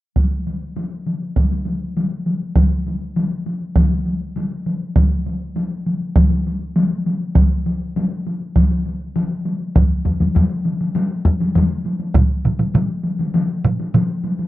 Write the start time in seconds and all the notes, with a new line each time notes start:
0.16 taiko, taiko high
0.32 taiko high
0.47 taiko high
0.62 taiko high
0.76 taiko high
0.91 taiko high
1.06 taiko high
1.22 taiko high
1.36 taiko, taiko high
1.52 taiko high
1.67 taiko high
1.82 taiko high
1.97 taiko high
2.12 taiko high
2.27 taiko high
2.42 taiko high
2.56 taiko, taiko high
2.71 taiko high
2.86 taiko high
3.01 taiko high
3.16 taiko high
3.31 taiko high
3.46 taiko high
3.62 taiko high
3.76 taiko, taiko high
3.91 taiko high
4.06 taiko high
4.21 taiko high
4.36 taiko high
4.51 taiko high
4.66 taiko high
4.81 taiko high
4.96 taiko, taiko high
5.11 taiko high
5.26 taiko high
5.42 taiko high
5.56 taiko high
5.72 taiko high
5.86 taiko high
6.02 taiko high
6.16 taiko, taiko high
6.31 taiko high
6.47 taiko high
6.76 taiko high
6.91 taiko high
7.06 taiko high
7.21 taiko high
7.35 taiko, taiko high
7.51 taiko high
7.66 taiko high
7.81 taiko high
7.96 taiko high
8.11 taiko high
8.26 taiko high
8.41 taiko high
8.56 taiko, taiko high
8.71 taiko high
8.86 taiko high
9.01 taiko high
9.16 taiko high
9.31 taiko high
9.45 taiko high
9.60 taiko high
9.75 taiko, taiko low-mid, taiko high
10.05 taiko low-mid, taiko high
10.20 taiko low-mid, taiko high
10.35 taiko low-mid, taiko high
10.65 taiko high
10.81 taiko high
10.95 taiko high
11.25 taiko low-mid, taiko high
11.40 taiko high
11.55 taiko low-mid, taiko high
11.85 taiko high
12.00 taiko high
12.14 taiko, taiko mid, taiko high
12.45 taiko mid, taiko high
12.59 taiko mid, taiko high
12.74 taiko mid, taiko high
13.04 taiko high
13.19 taiko high
13.34 taiko high
13.64 taiko mid, taiko high
13.80 taiko high
13.94 taiko mid, taiko high
14.24 taiko high
14.39 taiko high